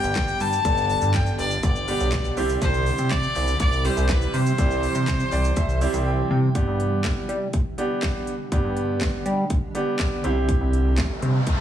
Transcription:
Already playing: B2 D3 G3 B3 D4 G4 G5
0.04 G1, shaker
0.15 kick, snare, clap, closed hi-hat, shaker
0.28 shaker
0.40 G2 A5, open hi-hat, shaker
0.53 shaker
0.65 G1 G3 B3 D4 A4, kick, closed hi-hat, shaker
0.77 shaker
0.90 open hi-hat, shaker
1.02 G2, shaker
1.14 G5, kick, snare, clap, closed hi-hat, shaker
1.26 shaker
1.39 G1 D5, open hi-hat, shaker
1.51 shaker
1.63 G1 D5, kick, closed hi-hat, shaker
1.76 shaker
1.88 G3 B3 D4 G4, open hi-hat, shaker
2.00 B1, shaker
2.12 kick, snare, clap, closed hi-hat, shaker
2.25 shaker
2.37 C2 C3 E3 G3 C4 E4 G4, open hi-hat, shaker
2.49 shaker
2.62 C2 C5, kick, closed hi-hat, shaker
2.74 shaker
2.86 open hi-hat, shaker
2.98 C3, shaker
3.11 D5, kick, snare, clap, closed hi-hat, shaker
3.23 shaker
3.35 C2, clap, open hi-hat, shaker
3.48 shaker
3.60 C2 D5, kick, closed hi-hat, shaker
3.73 shaker
3.85 G3 C4 E4 G4 C5, open hi-hat, shaker
3.97 C2, shaker
4.09 B4, kick, snare, clap, closed hi-hat, shaker
4.22 shaker
4.34 C3 C5, open hi-hat, shaker
4.46 shaker
4.58 C2 G3 C4 E4 G4, kick, closed hi-hat, shaker
4.71 shaker
4.83 open hi-hat, shaker
4.95 C3, shaker
5.07 kick, snare, clap, closed hi-hat, shaker
5.20 shaker
5.32 C2 D5, clap, open hi-hat, shaker
5.44 shaker
5.56 C2 E5, kick, closed hi-hat, shaker
5.69 shaker
5.81 G3 C4 E4 G4 E5, open hi-hat, shaker
5.94 C2, shaker
6.06 G5
6.31 C3 G5
6.55 G2 B2 D3 G3 B3 D4 G4, kick, closed hi-hat
6.67 G2
6.80 closed hi-hat
7.04 kick, snare, clap, closed hi-hat
7.29 G3, closed hi-hat
7.53 kick, closed hi-hat
7.78 B3 D4 G4, closed hi-hat
8.03 kick, snare, clap, closed hi-hat
8.27 closed hi-hat
8.52 G2 B3 D4 G4, kick, closed hi-hat
8.64 G2
8.77 closed hi-hat
9.01 kick, snare, clap, closed hi-hat
9.26 G3, closed hi-hat
9.50 kick, closed hi-hat
9.75 B3 D4 G4, closed hi-hat
9.99 kick, snare, clap, closed hi-hat
10.24 C2 C3 E3 C4 E4 G4, closed hi-hat
10.49 kick, closed hi-hat, riser
10.61 C2
10.73 closed hi-hat
10.98 kick, snare, clap, closed hi-hat
11.22 C3, closed hi-hat
11.47 kick, closed hi-hat

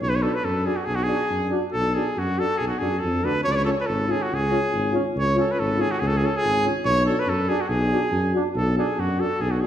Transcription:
0.01 B1 C#5
0.10 B4
0.16 C#5
0.22 D4 F#4 A4
0.35 B4
0.44 F#2 A4
0.65 D4 F#4 G#4
0.77 F#4
0.85 B1 G#4
0.95 F#4
1.04 D4 G#4
1.08 F#4
1.30 F#2
1.50 D4 F#4
1.72 B1 A4
1.95 D4 F#4 G#4
2.17 F#2 F#4
2.38 D4 F#4 A4
2.58 B1 G#4
2.68 F#4
2.79 F#2 D4 F#4 G#4
3.00 A4
3.04 F2
3.24 D2 D4 F#4 B4
3.44 C#2 C#5
3.52 D5
3.56 C#5
3.65 C#4 F4 A4
3.81 B4
3.87 G#1 A4
4.07 C#4 F4
4.11 G#4
4.23 F#4
4.32 C#2 G#4
4.50 C#4 F4
4.73 G#1
4.91 C#4 F4
5.15 C#2 C#5
5.35 C#4 F4
5.40 A4
5.51 B4
5.59 G#1 A4
5.77 C#4 F4
5.81 G#4
5.92 F#4
6.00 C#2 G#4
6.08 A4
6.18 G#4
6.22 C#4 F4 A4
6.37 G#4
6.44 G#1
6.63 C#4 F4
6.85 B1 C#5
7.06 D4 F#4 A4
7.20 B4
7.26 F#2 A4
7.48 D4 F#4 G#4
7.61 F#4
7.69 B1 G#4
7.92 D4 F#4
8.11 F#2
8.33 D4 F#4
8.55 B1 A4
8.75 D4 F#4 G#4
8.98 F#2 F#4
9.17 D4 F#4 A4
9.40 B1 G#4
9.51 F#4
9.61 D4 F#4 G#4

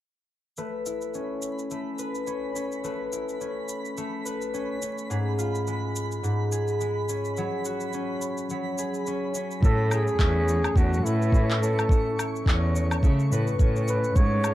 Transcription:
0.56 A3 B4 B5, shaker
0.86 E4, shaker
1.01 shaker
1.14 C#4, shaker
1.42 shaker
1.59 shaker
1.71 A3, shaker
1.99 B4, shaker
2.15 shaker
2.27 C#4, shaker
2.55 C#4, shaker
2.72 shaker
2.84 A3 B4, shaker
3.12 E4, shaker
3.29 shaker
3.41 C#4, shaker
3.69 shaker
3.85 shaker
3.97 A3, shaker
4.26 B4, shaker
4.41 shaker
4.54 C#4, shaker
4.82 C#4, shaker
4.98 shaker
5.10 G#2 G#4, shaker
5.38 F4, shaker
5.55 shaker
5.67 G#3, shaker
5.96 shaker
6.12 shaker
6.23 G#2, shaker
6.52 G#4, shaker
6.68 shaker
6.81 G#3, shaker
7.09 C#4, shaker
7.25 shaker
7.37 F#3 G#4, shaker
7.65 F#4, shaker
7.80 shaker
7.93 C#4, shaker
8.21 shaker
8.37 shaker
8.50 F#3, shaker
8.78 G#4, shaker
8.94 shaker
9.06 C#4, shaker
9.35 C#4, shaker
9.51 shaker
9.62 A2 A3 A4 C#6, kick, shaker
9.91 E4 G#4, low woodblock, shaker
10.07 shaker
10.19 E2 C#4, kick, clap, shaker
10.48 shaker
10.64 low woodblock, shaker
10.75 E2 A3 F#4, kick, shaker
10.94 shaker
11.04 A2 E4 B4, shaker
11.22 shaker
11.32 C#4, kick, shaker
11.51 clap, shaker
11.62 E4 A4, shaker
11.79 low woodblock, shaker
11.89 A3, kick, shaker
12.18 E4, low woodblock, shaker
12.36 shaker
12.46 E2 C#4, kick, clap, shaker
12.76 shaker
12.91 low woodblock, shaker
13.03 C#3 A3, kick, shaker
13.20 shaker
13.31 A2 B4, shaker
13.47 shaker
13.59 A2 C#4, kick, shaker
13.76 shaker
13.88 E4 B4, shaker
14.04 shaker
14.16 G#2 C#5, kick, shaker
14.44 F4, low woodblock, shaker

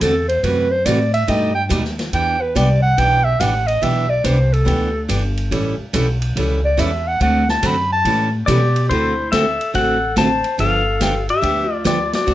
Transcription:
0.01 E2 D3 A3 C4 F#4 A4, kick, hi-hat pedal, ride
0.28 C5, ride
0.43 F#2 C3 E3 A3 E4 F#4 B4, kick, ride
0.71 C5
0.86 A2 C3 E3 A3 E4 F#4 D5, kick, hi-hat pedal, ride
1.14 E5, ride
1.27 G2 B2 G3 A3 D#4 G4 D#5, kick, ride
1.55 G5
1.69 D#2 B2 G3 A3 D#4 G4, kick, hi-hat pedal, ride
1.85 snare
1.99 snare, ride
2.13 E2 E3 B3 D4 G4 G5, kick, ride
2.41 B4
2.55 C2 E3 B3 D4 G4 D5, kick, hi-hat pedal, ride
2.82 F#5
2.97 B1 E3 B3 D4 G4 G5, kick, ride
3.24 E5
3.40 A1 E3 B3 D4 G4 F#5, kick, hi-hat pedal, ride
3.67 D#5, ride
3.82 B1 E3 B3 D4 G4 E5, kick, ride
4.10 D5
4.24 C2 E3 B3 D4 G4 C5, kick, hi-hat pedal, ride
4.53 A4, ride
4.65 D2 E3 B3 D4 G4, kick, ride
5.08 G1 E3 B3 D4 G4, kick, hi-hat pedal, ride
5.37 ride
5.51 A1 E3 G3 C#4 E4 A4, kick, ride
5.79 muted upright bass stroke
5.93 B1 E3 G3 C#4 E4 A4, kick, hi-hat pedal, ride
6.22 ride
6.36 C#2 E3 G3 C#4 E4 A4, kick, ride
6.65 D5
6.77 E2 E3 G3 C#4 E4 A4 E5, kick, hi-hat pedal, ride
7.08 F#5
7.20 D2 D3 A3 C4 F#4 A4 F#5, kick, ride
7.49 A5, snare
7.62 F#2 D3 A3 C4 F#4 A4 B5, kick, hi-hat pedal, ride
7.93 A5
8.05 A2 E3 G3 C#4 E4 A4, kick, ride
8.46 B2 E3 G3 C#4 E4 G4 A4 D5, kick, hi-hat pedal, ride
8.76 ride
8.89 D2 D3 A3 C4 E4 F#4 A4 C5, kick, ride
9.32 D3 A3 C4 F#4 A4 E5, kick, snare, hi-hat pedal, ride
9.61 ride
9.73 A1 D3 A3 C4 F#4 A4 F#5, kick, ride
10.16 D3 A3 C4 F#4 A4 C5 A5, kick, snare, hi-hat pedal, ride
10.44 ride
10.58 G1 D3 F3 B3 D4 G4 A4 F5, kick, ride
11.00 D3 F3 B3 D4 G4, kick, snare, hi-hat pedal, ride
11.29 G4 E5, ride
11.41 D2 D3 F3 B3 D4 G4, kick, ride
11.70 F4
11.74 D5
11.84 D3 F3 B3 D4 F4 G4 D5, kick, snare, hi-hat pedal, ride
12.13 F#4 D5, snare, ride
12.26 D2 D3 A3 C4 F#4 A4, kick, ride

